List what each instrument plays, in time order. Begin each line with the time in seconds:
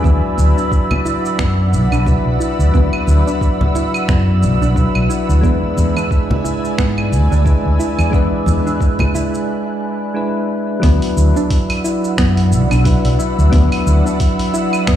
Already playing: ambient pad D5 B5 E6
0.01 fretless electric bass D2, synth keys F#3 D4 E4, synth arpeggio sound B3, ambient pad F#5, kick
0.05 synth keys B4, cabasa
0.38 fretless electric bass D2, low conga, cabasa
0.57 synth arpeggio sound D4, cabasa
0.72 kick, cabasa
0.91 high conga, low conga, claves
1.05 synth arpeggio sound E4, high conga, cabasa
1.25 cabasa
1.39 fretless electric bass F#2, synth arpeggio sound B3, finger snap, kick, cabasa
1.72 fretless electric bass B1, cabasa
1.92 fretless electric bass B1, synth arpeggio sound D4, cabasa, claves
2.05 synth keys F#3 D4 E4 B4, kick, high conga, cabasa
2.26 fretless electric bass B1
2.40 synth arpeggio sound E4, cabasa
2.59 fretless electric bass D2, cabasa
2.72 fretless electric bass D2, synth keys F#3 D4 E4, synth arpeggio sound B3, kick, cabasa
2.77 synth keys B4
2.93 claves
3.07 fretless electric bass D2, low conga, cabasa
3.27 synth arpeggio sound D4, cabasa
3.41 kick, cabasa
3.61 high conga, low conga
3.75 synth arpeggio sound E4, high conga, cabasa
3.94 cabasa, claves
4.09 fretless electric bass F#2, synth arpeggio sound B3, finger snap, kick, high conga, cabasa
4.42 fretless electric bass B1, cabasa
4.61 fretless electric bass B1, synth arpeggio sound D4, cabasa
4.75 synth keys F#3 D4 E4 B4, kick, cabasa
4.95 fretless electric bass B1, claves
5.09 synth arpeggio sound E4, cabasa
5.29 fretless electric bass D2, cabasa
5.41 fretless electric bass E2, synth keys G#3 D4 E4, synth arpeggio sound B3, ambient pad D5 G#5, kick, cabasa
5.46 synth keys B4
5.77 fretless electric bass E2, low conga, cabasa
5.96 synth arpeggio sound D4, cabasa, claves
6.11 kick, cabasa
6.30 high conga, low conga
6.44 synth arpeggio sound E4, high conga, cabasa
6.65 cabasa
6.78 fretless electric bass G#2, synth arpeggio sound B3, finger snap, kick, cabasa
6.98 claves
7.12 fretless electric bass D2, cabasa
7.31 fretless electric bass D2, synth arpeggio sound D4, cabasa
7.44 synth keys G#3 D4 E4 B4, kick, high conga, cabasa
7.65 fretless electric bass D2
7.79 synth arpeggio sound E4, cabasa
7.98 fretless electric bass E2, cabasa, claves
8.10 fretless electric bass E2, synth keys G#3 D4 E4, synth arpeggio sound B3, ambient pad F#6, kick, cabasa
8.15 synth keys B4
8.46 fretless electric bass E2, low conga, cabasa
8.67 synth arpeggio sound D4, cabasa
8.80 kick, cabasa
8.99 high conga, low conga, claves
9.14 synth arpeggio sound E4, high conga, cabasa
9.35 cabasa
10.14 synth keys G#3 D4 E4 B4
10.80 fretless electric bass D2, synth keys F#3 D4 E4, synth arpeggio sound B3, ambient pad D5 F#5 B5 E6, kick, open hi-hat
10.84 synth keys B4, cabasa
11.02 open hi-hat
11.17 fretless electric bass D2, cabasa
11.36 synth arpeggio sound D4, cabasa
11.50 kick, open hi-hat, cabasa
11.70 open hi-hat, claves
11.84 synth arpeggio sound E4, cabasa
12.04 cabasa
12.18 fretless electric bass F#2, synth arpeggio sound B3, finger snap, kick, open hi-hat, cabasa
12.37 open hi-hat
12.51 fretless electric bass B1, cabasa
12.71 fretless electric bass B1, synth arpeggio sound D4, open hi-hat, cabasa, claves
12.84 synth keys F#3 D4 E4 B4, kick, open hi-hat, cabasa
13.05 fretless electric bass B1, open hi-hat
13.19 synth arpeggio sound E4, cabasa
13.38 fretless electric bass D2, cabasa
13.50 fretless electric bass D2, synth keys F#3 D4 E4, synth arpeggio sound B3, kick, open hi-hat, cabasa
13.55 synth keys B4
13.72 open hi-hat, claves
13.86 fretless electric bass D2, cabasa
14.05 synth arpeggio sound D4, cabasa
14.20 kick, open hi-hat, cabasa
14.39 open hi-hat
14.54 synth arpeggio sound E4, cabasa
14.73 cabasa, claves
14.87 fretless electric bass F#2, synth arpeggio sound B3, finger snap, kick, open hi-hat, cabasa